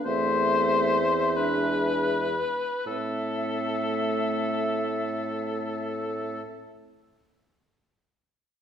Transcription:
X:1
M:6/8
L:1/8
Q:3/8=41
K:Am
V:1 name="Flute"
e4- e z | e6- | e6 |]
V:2 name="Oboe"
c3 B3 | A6- | A6 |]
V:3 name="Clarinet"
C3 D2 z | C6- | C6 |]
V:4 name="French horn"
A,2 z ^G,2 z | A,6- | A,6 |]
V:5 name="Bassoon" clef=bass
E,,4- E,, z | A,,6- | A,,6 |]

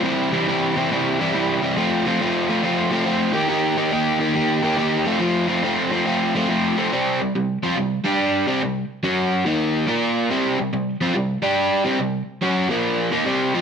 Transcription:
X:1
M:4/4
L:1/8
Q:"Swing" 1/4=141
K:F
V:1 name="Overdriven electric guitar"
[C,E,G,CE] [C,E,G,CE] [C,E,G,CE] [C,E,G,CE] [C,E,G,CE] [C,E,G,CE] [C,E,G,CE] [C,E,G,CE] | [F,A,CF] [F,A,CF] [F,A,CF] [F,A,CF] [F,A,CF] [F,A,CF] [F,A,CF] [_E,B,_EG] | [_E,B,_EG] [E,B,EG] [E,B,EG] [E,B,EG] [E,B,EG] [E,B,EG] [E,B,EG] [F,A,CF] | [F,A,CF] [F,A,CF] [F,A,CF] [F,A,CF] [F,A,CF] [F,A,CF] [F,A,CF] [F,A,CF] |
[C,G,C] [C,G,] [C,G,] [F,CF] [C,G,] [G,DG]2 [C,G,C] | [C,G,] z [^F,^C^F]2 [_E,B,_E]2 [B,=FB]2 | [C,G,C] [C,G,] [C,G,] [F,CF] [C,G,] [G,DG]2 [C,G,C] | [C,G,] z [^F,_D^F] [B,,=F,B,]2 [_E,B,_E] [C,G,C] [F,C=F] |]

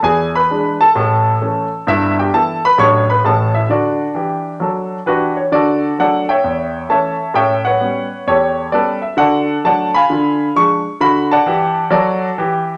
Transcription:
X:1
M:4/4
L:1/8
Q:"Swing" 1/4=131
K:A
V:1 name="Grand piano"
[Gg] [Bb]2 [Aa]4- [Aa] | [K:D] [Ee] [Gg] [Aa] [Bb] [cc'] [Bb] [Aa] [Ee] | [Dd]6 [DFB] c | [FAd]2 [Adf] [ceg]3 [cea]2 |
[ceg] [Bcf]3 [GAc]2 [ABd] e | [Adf]2 [dfa] [=f^gb]3 c'2 | b [dfa]3 [FAd]2 z2 |]
V:2 name="Grand piano" clef=bass
[E,,E,]2 [E,G,D]2 [A,,,A,,]2 [E,A,C]2 | [K:D] [G,,,G,,]2 [E,B,E]2 [A,,,A,,F,A,D]2 [A,,,A,,E,A,C]2 | [D,F]2 [E,G]2 [F,A]2 [E,G]2 | D,2 [F,A,D]2 E,,2 [E,A,C]2 |
[A,,C]2 [G,B,C]2 E,,2 [G,B,C]2 | [D,F]2 [F,A,D]2 [D,=F]2 [=F,_A,D]2 | [D,F]2 [E,G]2 F,2 [E,G]2 |]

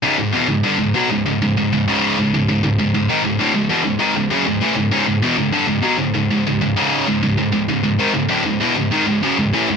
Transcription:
X:1
M:4/4
L:1/16
Q:1/4=98
K:C#m
V:1 name="Distorted electric guitar" clef=bass
[C,,G,,] [C,,G,,] [E,,B,,] [C,,G,,] [=G,,=D,] [C,,^G,,] [B,,F,] [C,,G,,] [C,,G,,] [C,,G,,] [C,,G,,] [C,,G,,] [C,,G,,C,]2 [C,,G,,] [C,,G,,] | [C,,G,,] [C,,G,,] [C,,G,,] [C,,G,,] [G,,D,] [C,,G,,] [=D,,A,,] [C,,G,,] [E,,B,,] [C,,G,,] [G,,^D,] [C,,G,,] [F,,C,] [C,,G,,] [A,,E,] [C,,G,,] | [C,,G,,] [C,,G,,] [E,,B,,] [C,,G,,] [=G,,=D,] [C,,^G,,] [B,,F,] [C,,G,,] [C,,G,,] [C,,G,,] [C,,G,,] [C,,G,,] [C,,G,,C,]2 [C,,G,,] [C,,G,,] | [C,,G,,] [C,,G,,] [C,,G,,] [C,,G,,] [G,,D,] [C,,G,,] [=D,,A,,] [C,,G,,] [E,,B,,] [C,,G,,] [G,,^D,] [C,,G,,] [F,,C,] [C,,G,,] [A,,E,] [C,,G,,] |]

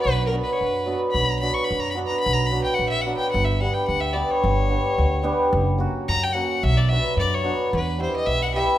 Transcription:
X:1
M:2/4
L:1/16
Q:"Swing 16ths" 1/4=109
K:Bm
V:1 name="Fiddle"
B2 ^A B/2 c/2 B3 z | b ^a b c' b a b a | b ^a b g f e f g | f e f g f e d c- |
c8- | c z3 ^a g f2 | e d e2 d c3 | [K:Em] B2 c ^d e f e2 |]
V:2 name="Hammered dulcimer"
z2 [F,B,DF]2 z2 [F,B,DF]2 | z2 [F,B,DF]2 z2 [F,B,DF]2 | z2 [F,B,DF]2 z2 [F,B,DF]2 | z2 [G,B,DG]2 z2 [G,B,DG]2 |
z2 [G,B,DG]2 z2 [G,B,DG]2 | z2 [F,^A,CF]2 z2 [F,A,CF]2 | z2 [F,B,DF]2 z2 [F,B,DF]2 | [K:Em] z2 [G,B,EG]2 z2 [G,B,EG]2 |]
V:3 name="Upright bass" clef=bass
B,,,4 F,,4 | B,,,4 F,,4 | B,,,4 ^A,,,4 | G,,,4 D,,4 |
G,,,4 D,,4 | F,,,4 F,,4 | B,,,4 F,,4 | [K:Em] E,,4 B,,,4 |]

